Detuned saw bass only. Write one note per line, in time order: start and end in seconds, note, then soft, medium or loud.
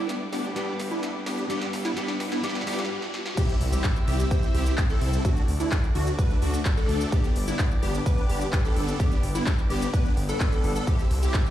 0.33 0.49 G1 medium
0.79 0.96 G1 medium
1.26 1.42 G1 loud
1.73 1.89 G1 loud
2.20 2.36 G1 loud
2.67 2.83 G1 medium
3.61 3.77 C2 loud
4.08 4.24 C2 loud
4.55 4.71 C2 medium
5.01 5.17 C2 loud
5.48 5.64 D2 loud
5.95 6.11 D2 loud
6.42 6.58 D2 medium
6.89 7.05 D2 loud
7.36 7.52 G1 loud
7.83 7.99 G1 loud
8.30 8.46 G1 medium
8.76 8.92 G1 loud
9.23 9.39 G1 loud
9.70 9.86 G1 medium
10.17 10.33 G1 medium
10.64 10.80 G1 loud
11.11 11.27 C2 loud